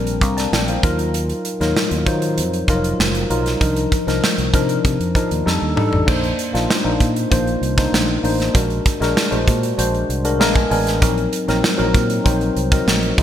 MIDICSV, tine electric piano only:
0, 0, Header, 1, 2, 480
1, 0, Start_track
1, 0, Tempo, 617157
1, 886, Time_signature, 4, 2, 24, 8
1, 10288, End_track
2, 0, Start_track
2, 0, Title_t, "Tine electric piano"
2, 0, Program_c, 0, 4
2, 0, Control_c, 0, 64, 127
2, 0, Note_on_c, 0, 55, 78
2, 0, Note_on_c, 0, 60, 75
2, 0, Note_on_c, 0, 62, 72
2, 0, Note_on_c, 0, 69, 82
2, 0, Note_on_c, 0, 70, 89
2, 0, Note_on_c, 0, 72, 86
2, 171, Note_on_c, 0, 82, 54
2, 174, Note_on_c, 0, 77, 48
2, 283, Note_off_c, 0, 82, 0
2, 284, Note_off_c, 0, 77, 0
2, 287, Note_on_c, 0, 81, 66
2, 293, Note_on_c, 0, 74, 54
2, 401, Note_off_c, 0, 81, 0
2, 404, Note_off_c, 0, 74, 0
2, 412, Note_on_c, 0, 79, 64
2, 417, Note_on_c, 0, 74, 58
2, 523, Note_off_c, 0, 79, 0
2, 526, Note_off_c, 0, 74, 0
2, 534, Note_on_c, 0, 77, 59
2, 539, Note_off_c, 0, 72, 0
2, 539, Note_on_c, 0, 72, 50
2, 644, Note_on_c, 0, 54, 75
2, 645, Note_on_c, 0, 63, 66
2, 649, Note_on_c, 0, 65, 77
2, 652, Note_off_c, 0, 70, 0
2, 652, Note_on_c, 0, 70, 91
2, 654, Control_c, 0, 64, 0
2, 655, Note_off_c, 0, 69, 0
2, 656, Note_off_c, 0, 62, 0
2, 661, Note_off_c, 0, 55, 0
2, 662, Note_off_c, 0, 60, 0
2, 758, Note_off_c, 0, 77, 0
2, 761, Note_off_c, 0, 72, 0
2, 795, Control_c, 0, 64, 127
2, 1125, Note_off_c, 0, 54, 0
2, 1126, Note_off_c, 0, 63, 0
2, 1127, Note_off_c, 0, 65, 0
2, 1129, Note_off_c, 0, 70, 0
2, 1247, Note_on_c, 0, 54, 83
2, 1249, Note_on_c, 0, 63, 77
2, 1253, Note_on_c, 0, 65, 73
2, 1255, Note_on_c, 0, 70, 91
2, 1512, Note_off_c, 0, 54, 0
2, 1513, Note_off_c, 0, 63, 0
2, 1515, Note_off_c, 0, 65, 0
2, 1516, Note_off_c, 0, 70, 0
2, 1601, Note_on_c, 0, 54, 83
2, 1605, Note_on_c, 0, 63, 75
2, 1608, Note_on_c, 0, 65, 75
2, 1610, Note_on_c, 0, 72, 95
2, 1958, Note_off_c, 0, 54, 0
2, 1959, Note_off_c, 0, 63, 0
2, 1961, Note_off_c, 0, 65, 0
2, 1962, Note_off_c, 0, 72, 0
2, 2086, Note_on_c, 0, 53, 59
2, 2089, Note_on_c, 0, 63, 65
2, 2093, Note_on_c, 0, 65, 72
2, 2097, Note_on_c, 0, 70, 89
2, 2136, Note_on_c, 0, 54, 70
2, 2137, Note_off_c, 0, 53, 0
2, 2441, Note_off_c, 0, 63, 0
2, 2444, Note_off_c, 0, 65, 0
2, 2445, Note_off_c, 0, 70, 0
2, 2465, Note_off_c, 0, 54, 0
2, 2562, Note_on_c, 0, 54, 69
2, 2567, Note_on_c, 0, 63, 72
2, 2572, Note_on_c, 0, 65, 66
2, 2574, Note_on_c, 0, 70, 80
2, 2741, Note_off_c, 0, 54, 0
2, 2743, Note_off_c, 0, 63, 0
2, 2746, Note_off_c, 0, 65, 0
2, 2747, Note_off_c, 0, 70, 0
2, 2800, Note_on_c, 0, 53, 78
2, 2806, Note_on_c, 0, 62, 76
2, 2810, Note_on_c, 0, 63, 75
2, 2811, Note_on_c, 0, 70, 80
2, 2817, Control_c, 0, 64, 0
2, 2939, Control_c, 0, 64, 127
2, 3068, Note_off_c, 0, 53, 0
2, 3071, Note_off_c, 0, 62, 0
2, 3073, Note_off_c, 0, 63, 0
2, 3074, Note_off_c, 0, 70, 0
2, 3166, Note_on_c, 0, 53, 80
2, 3168, Note_on_c, 0, 62, 67
2, 3172, Note_on_c, 0, 63, 69
2, 3175, Note_on_c, 0, 70, 86
2, 3431, Note_off_c, 0, 53, 0
2, 3432, Note_off_c, 0, 62, 0
2, 3435, Note_off_c, 0, 63, 0
2, 3436, Note_off_c, 0, 70, 0
2, 3525, Note_on_c, 0, 53, 81
2, 3528, Note_on_c, 0, 62, 74
2, 3529, Note_on_c, 0, 63, 65
2, 3535, Note_on_c, 0, 70, 88
2, 3879, Note_off_c, 0, 53, 0
2, 3881, Note_off_c, 0, 62, 0
2, 3881, Note_off_c, 0, 63, 0
2, 3884, Note_off_c, 0, 70, 0
2, 4005, Note_on_c, 0, 53, 73
2, 4005, Note_on_c, 0, 62, 64
2, 4011, Note_on_c, 0, 63, 69
2, 4012, Note_on_c, 0, 70, 75
2, 4236, Note_off_c, 0, 62, 0
2, 4240, Note_off_c, 0, 63, 0
2, 4242, Note_on_c, 0, 55, 85
2, 4245, Note_on_c, 0, 62, 73
2, 4246, Note_off_c, 0, 53, 0
2, 4249, Note_off_c, 0, 70, 0
2, 4250, Note_on_c, 0, 63, 74
2, 4253, Note_on_c, 0, 69, 96
2, 4256, Control_c, 0, 64, 0
2, 4406, Control_c, 0, 64, 127
2, 4436, Note_off_c, 0, 55, 0
2, 4438, Note_off_c, 0, 62, 0
2, 4440, Note_off_c, 0, 63, 0
2, 4442, Note_off_c, 0, 69, 0
2, 4479, Note_on_c, 0, 55, 72
2, 4482, Note_on_c, 0, 62, 69
2, 4486, Note_on_c, 0, 63, 67
2, 4488, Note_on_c, 0, 69, 85
2, 4659, Note_off_c, 0, 55, 0
2, 4661, Note_off_c, 0, 62, 0
2, 4663, Note_off_c, 0, 63, 0
2, 4664, Note_off_c, 0, 69, 0
2, 4717, Note_on_c, 0, 58, 79
2, 4719, Note_on_c, 0, 62, 72
2, 4721, Note_on_c, 0, 63, 68
2, 4725, Note_on_c, 0, 72, 86
2, 4738, Control_c, 0, 64, 0
2, 4877, Control_c, 0, 64, 127
2, 4987, Note_off_c, 0, 58, 0
2, 4988, Note_off_c, 0, 62, 0
2, 4989, Note_off_c, 0, 63, 0
2, 4991, Note_off_c, 0, 72, 0
2, 5081, Note_on_c, 0, 58, 77
2, 5086, Note_on_c, 0, 62, 73
2, 5088, Note_on_c, 0, 63, 66
2, 5090, Note_on_c, 0, 65, 85
2, 5261, Note_off_c, 0, 58, 0
2, 5263, Note_off_c, 0, 62, 0
2, 5264, Note_off_c, 0, 63, 0
2, 5265, Note_off_c, 0, 65, 0
2, 5321, Note_on_c, 0, 58, 67
2, 5322, Note_on_c, 0, 62, 73
2, 5326, Note_on_c, 0, 63, 71
2, 5329, Note_on_c, 0, 72, 74
2, 5589, Note_off_c, 0, 58, 0
2, 5590, Note_off_c, 0, 62, 0
2, 5592, Note_off_c, 0, 63, 0
2, 5593, Note_off_c, 0, 72, 0
2, 5680, Note_on_c, 0, 58, 74
2, 5684, Note_on_c, 0, 62, 65
2, 5689, Note_on_c, 0, 63, 64
2, 5690, Note_on_c, 0, 72, 85
2, 5949, Note_off_c, 0, 58, 0
2, 5951, Note_off_c, 0, 62, 0
2, 5953, Note_off_c, 0, 63, 0
2, 5954, Note_off_c, 0, 72, 0
2, 6046, Note_on_c, 0, 58, 72
2, 6048, Note_on_c, 0, 62, 65
2, 6050, Note_on_c, 0, 63, 74
2, 6053, Note_on_c, 0, 72, 85
2, 6312, Note_off_c, 0, 58, 0
2, 6313, Note_off_c, 0, 62, 0
2, 6314, Note_off_c, 0, 63, 0
2, 6315, Note_off_c, 0, 72, 0
2, 6405, Note_on_c, 0, 58, 75
2, 6408, Note_on_c, 0, 62, 67
2, 6412, Note_on_c, 0, 63, 71
2, 6417, Note_on_c, 0, 72, 83
2, 6583, Note_off_c, 0, 58, 0
2, 6584, Note_off_c, 0, 62, 0
2, 6586, Note_off_c, 0, 63, 0
2, 6589, Note_off_c, 0, 72, 0
2, 6639, Note_on_c, 0, 56, 75
2, 6643, Note_on_c, 0, 62, 70
2, 6647, Note_on_c, 0, 66, 71
2, 6650, Note_on_c, 0, 70, 82
2, 6658, Control_c, 0, 64, 0
2, 6776, Control_c, 0, 64, 127
2, 6909, Note_off_c, 0, 56, 0
2, 6910, Note_off_c, 0, 62, 0
2, 6913, Note_off_c, 0, 66, 0
2, 6914, Note_off_c, 0, 70, 0
2, 7002, Note_on_c, 0, 56, 82
2, 7008, Note_on_c, 0, 62, 77
2, 7011, Note_on_c, 0, 66, 74
2, 7013, Note_on_c, 0, 70, 88
2, 7182, Note_off_c, 0, 56, 0
2, 7184, Note_off_c, 0, 62, 0
2, 7186, Note_off_c, 0, 66, 0
2, 7187, Note_off_c, 0, 70, 0
2, 7238, Note_on_c, 0, 56, 70
2, 7241, Note_on_c, 0, 62, 76
2, 7243, Note_on_c, 0, 66, 67
2, 7247, Note_on_c, 0, 72, 85
2, 7508, Note_off_c, 0, 56, 0
2, 7510, Note_off_c, 0, 62, 0
2, 7511, Note_off_c, 0, 66, 0
2, 7513, Note_off_c, 0, 72, 0
2, 7603, Note_on_c, 0, 56, 73
2, 7607, Note_on_c, 0, 66, 68
2, 7608, Note_on_c, 0, 62, 71
2, 7613, Note_on_c, 0, 72, 83
2, 7871, Note_off_c, 0, 56, 0
2, 7873, Note_off_c, 0, 62, 0
2, 7873, Note_off_c, 0, 66, 0
2, 7876, Note_off_c, 0, 72, 0
2, 7968, Note_on_c, 0, 56, 75
2, 7968, Note_on_c, 0, 62, 70
2, 7971, Note_on_c, 0, 66, 71
2, 7974, Note_on_c, 0, 70, 88
2, 8076, Note_off_c, 0, 56, 0
2, 8080, Note_off_c, 0, 62, 0
2, 8083, Note_off_c, 0, 70, 0
2, 8085, Note_on_c, 0, 56, 81
2, 8089, Note_off_c, 0, 66, 0
2, 8089, Note_on_c, 0, 59, 81
2, 8089, Note_on_c, 0, 62, 79
2, 8089, Note_on_c, 0, 77, 76
2, 8092, Note_on_c, 0, 70, 94
2, 8098, Control_c, 0, 64, 0
2, 8200, Note_off_c, 0, 77, 0
2, 8206, Note_on_c, 0, 80, 61
2, 8255, Control_c, 0, 64, 127
2, 8278, Note_off_c, 0, 56, 0
2, 8280, Note_off_c, 0, 59, 0
2, 8280, Note_off_c, 0, 62, 0
2, 8282, Note_off_c, 0, 70, 0
2, 8318, Note_off_c, 0, 80, 0
2, 8325, Note_on_c, 0, 56, 79
2, 8328, Note_on_c, 0, 59, 72
2, 8331, Note_on_c, 0, 62, 70
2, 8331, Note_on_c, 0, 80, 67
2, 8336, Note_on_c, 0, 70, 85
2, 8503, Note_off_c, 0, 56, 0
2, 8505, Note_off_c, 0, 59, 0
2, 8506, Note_off_c, 0, 62, 0
2, 8509, Note_off_c, 0, 70, 0
2, 8553, Note_off_c, 0, 80, 0
2, 8568, Note_on_c, 0, 54, 81
2, 8570, Note_on_c, 0, 60, 73
2, 8574, Note_on_c, 0, 63, 76
2, 8576, Note_on_c, 0, 70, 88
2, 8579, Control_c, 0, 64, 0
2, 8717, Control_c, 0, 64, 127
2, 8833, Note_off_c, 0, 54, 0
2, 8834, Note_off_c, 0, 60, 0
2, 8836, Note_off_c, 0, 63, 0
2, 8838, Note_off_c, 0, 70, 0
2, 8926, Note_on_c, 0, 54, 84
2, 8930, Note_on_c, 0, 60, 73
2, 8930, Note_on_c, 0, 63, 72
2, 8935, Note_on_c, 0, 70, 93
2, 9104, Note_off_c, 0, 54, 0
2, 9106, Note_off_c, 0, 60, 0
2, 9106, Note_off_c, 0, 63, 0
2, 9109, Note_off_c, 0, 70, 0
2, 9159, Note_on_c, 0, 54, 78
2, 9160, Note_on_c, 0, 60, 69
2, 9165, Note_on_c, 0, 63, 72
2, 9170, Note_on_c, 0, 70, 91
2, 9429, Note_off_c, 0, 54, 0
2, 9429, Note_off_c, 0, 60, 0
2, 9432, Note_off_c, 0, 63, 0
2, 9434, Note_off_c, 0, 70, 0
2, 9521, Note_on_c, 0, 54, 80
2, 9526, Note_on_c, 0, 60, 71
2, 9527, Note_on_c, 0, 63, 69
2, 9530, Note_on_c, 0, 72, 89
2, 9790, Note_off_c, 0, 54, 0
2, 9793, Note_off_c, 0, 60, 0
2, 9793, Note_off_c, 0, 63, 0
2, 9795, Note_off_c, 0, 72, 0
2, 9885, Note_on_c, 0, 54, 76
2, 9892, Note_on_c, 0, 60, 72
2, 9893, Note_on_c, 0, 63, 75
2, 9896, Note_on_c, 0, 70, 85
2, 10152, Note_off_c, 0, 54, 0
2, 10155, Note_off_c, 0, 60, 0
2, 10156, Note_off_c, 0, 63, 0
2, 10158, Note_off_c, 0, 70, 0
2, 10248, Note_on_c, 0, 55, 80
2, 10252, Note_on_c, 0, 63, 79
2, 10254, Note_on_c, 0, 65, 77
2, 10256, Control_c, 0, 64, 0
2, 10257, Note_on_c, 0, 68, 78
2, 10288, Note_off_c, 0, 55, 0
2, 10288, Note_off_c, 0, 63, 0
2, 10288, Note_off_c, 0, 65, 0
2, 10288, Note_off_c, 0, 68, 0
2, 10288, End_track
0, 0, End_of_file